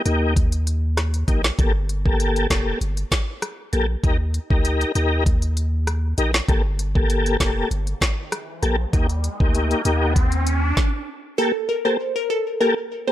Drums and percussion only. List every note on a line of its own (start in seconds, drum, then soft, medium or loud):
0.06 closed hi-hat medium
0.36 kick medium
0.36 closed hi-hat medium
0.52 closed hi-hat medium
0.67 closed hi-hat medium
0.97 cross-stick medium
0.97 snare medium
0.97 closed hi-hat medium
1.14 closed hi-hat medium
1.28 kick loud
1.28 closed hi-hat medium
1.44 snare loud
1.59 kick loud
1.59 closed hi-hat medium
1.89 closed hi-hat medium
2.06 kick medium
2.20 closed hi-hat medium
2.36 closed hi-hat medium
2.50 kick medium
2.50 snare loud
2.50 closed hi-hat medium
2.81 closed hi-hat medium
2.97 closed hi-hat medium
3.12 kick medium
3.12 snare loud
3.12 closed hi-hat medium
3.42 cross-stick medium
3.42 closed hi-hat medium
3.73 closed hi-hat medium
4.04 kick loud
4.04 closed hi-hat medium
4.34 closed hi-hat medium
4.50 kick medium
4.65 closed hi-hat medium
4.81 closed hi-hat medium
4.95 closed hi-hat medium
5.26 kick medium
5.26 closed hi-hat medium
5.42 closed hi-hat medium
5.57 closed hi-hat medium
5.87 cross-stick medium
5.87 closed hi-hat medium
6.18 closed hi-hat medium
6.34 snare loud
6.48 kick loud
6.48 closed hi-hat medium
6.79 closed hi-hat medium
6.95 kick medium
7.10 closed hi-hat medium
7.26 closed hi-hat medium
7.40 kick medium
7.40 snare loud
7.40 closed hi-hat medium
7.71 closed hi-hat medium
7.87 closed hi-hat medium
8.01 kick medium
8.01 snare loud
8.01 closed hi-hat medium
8.32 cross-stick medium
8.32 closed hi-hat medium
8.63 closed hi-hat medium
8.93 kick loud
8.93 closed hi-hat medium
9.09 closed hi-hat medium
9.24 closed hi-hat medium
9.40 kick medium
9.55 closed hi-hat medium
9.71 closed hi-hat medium
9.85 closed hi-hat medium
10.16 kick loud
10.16 closed hi-hat medium
10.32 closed hi-hat medium
10.47 closed hi-hat medium
10.77 kick loud
10.77 snare medium